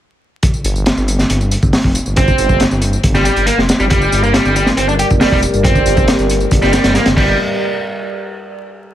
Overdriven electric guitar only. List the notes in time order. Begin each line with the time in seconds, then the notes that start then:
2.17 C4
3.15 G3
3.25 G3
3.47 A#3
3.80 G3
3.90 G3
4.23 A#3
4.34 G3
4.56 G3
4.77 C4
4.88 D4
4.99 G4
5.21 G3
5.32 G3
5.64 C4
6.62 G3
6.73 G3
6.95 A#3
7.17 G3